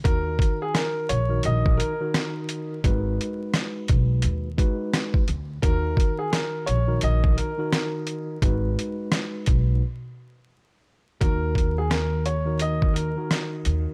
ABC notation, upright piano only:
X:1
M:4/4
L:1/16
Q:"Swing 16ths" 1/4=86
K:Ebm
V:1 name="Upright piano"
B3 A B2 d2 e2 B3 z3 | z16 | B3 A B2 d2 e2 B3 z3 | z16 |
B3 A B2 d2 e2 B3 z3 |]